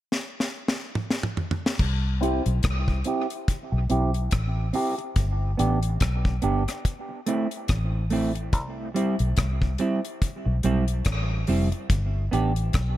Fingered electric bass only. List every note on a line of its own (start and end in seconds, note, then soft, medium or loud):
1.80 2.39 C2 loud
2.46 2.62 B1 medium
2.64 3.02 C2 medium
3.72 3.88 B1 medium
3.90 4.28 B1 medium
4.33 4.70 A1 medium
5.16 5.54 G1 loud
5.59 5.97 A1 medium
6.01 6.39 B1 medium
6.43 6.65 G1 medium
7.70 8.53 A1 medium
8.53 9.13 C2 loud
9.20 9.36 B1 medium
9.38 9.75 C2 medium
10.46 10.62 B1 medium
10.64 11.02 B1 medium
11.06 11.44 A1 medium
11.49 11.70 F1 medium
11.90 12.28 G1 loud
12.33 12.70 A1 medium
12.75 12.97 B1 medium